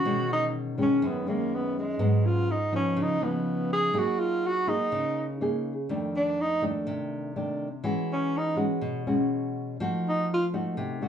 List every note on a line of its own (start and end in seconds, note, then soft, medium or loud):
0.00 0.32 F#4 loud
0.05 1.00 B2 medium
0.05 0.74 D#3 medium
0.05 0.74 G#3 medium
0.05 0.74 C#4 medium
0.33 0.46 D#4 medium
0.78 1.22 D#3 medium
0.78 1.23 G#3 medium
0.78 1.23 C#4 medium
0.82 1.09 C#4 medium
1.02 1.97 F#2 medium
1.07 1.29 B3 medium
1.27 1.96 D#3 medium
1.27 1.96 G#3 medium
1.27 1.56 A#3 medium
1.27 1.96 C#4 medium
1.55 1.77 B3 medium
1.79 2.28 G#3 medium
1.99 2.94 G#2 medium
1.99 2.48 F#3 medium
1.99 2.48 B3 medium
1.99 2.48 C#4 medium
2.26 2.53 F4 medium
2.51 2.74 D#4 medium
2.72 3.17 F3 medium
2.72 3.17 B3 medium
2.72 3.04 C#4 medium
2.72 3.17 D#4 medium
2.96 3.92 C#3 medium
3.02 3.25 D#4 medium
3.21 3.90 F3 medium
3.21 3.90 B3 medium
3.21 3.72 B3 medium
3.21 3.90 D#4 medium
3.73 4.00 G#4 loud
3.94 4.89 F#3 medium
3.94 4.63 A#3 medium
3.94 4.63 D#4 medium
3.94 4.63 G#4 medium
3.98 4.21 F#4 medium
4.20 4.48 F4 medium
4.47 4.70 F#4 medium
4.67 5.36 A#3 medium
4.67 5.36 D#4 medium
4.67 5.41 D#4 medium
4.67 5.36 G#4 medium
4.92 5.87 C#3 medium
5.41 5.72 A#3 medium
5.41 5.72 D#4 medium
5.41 5.73 G#4 medium
5.89 6.84 F2 medium
5.89 6.38 D#3 medium
5.89 6.38 A3 medium
5.89 6.38 D4 medium
6.16 6.43 D4 medium
6.41 6.64 D#4 medium
6.62 7.31 D#3 medium
6.62 7.32 A3 medium
6.62 7.32 D4 medium
6.87 7.82 C3 medium
7.36 7.67 D#3 medium
7.36 7.67 A3 medium
7.36 7.67 D4 medium
7.84 8.79 E3 medium
7.84 8.53 G#3 medium
7.84 8.53 C#4 soft
7.84 8.53 F#4 medium
8.13 8.39 C#4 medium
8.37 8.59 D#4 medium
8.56 9.02 G#3 medium
8.56 9.02 C#4 medium
8.56 9.02 F#4 medium
8.81 9.77 B2 medium
9.07 9.76 G#3 medium
9.07 9.76 C#4 medium
9.07 9.76 F#4 medium
9.80 10.75 F3 medium
9.80 10.28 A3 medium
9.80 10.28 D#4 medium
9.80 10.29 F#4 medium
10.09 10.29 D#4 medium
10.34 10.47 F4 medium
10.54 10.98 A3 medium
10.54 10.98 D#4 medium
10.54 10.98 F#4 medium
10.77 11.08 C3 medium
11.02 11.08 A3 medium
11.02 11.08 D#4 medium
11.02 11.08 F#4 medium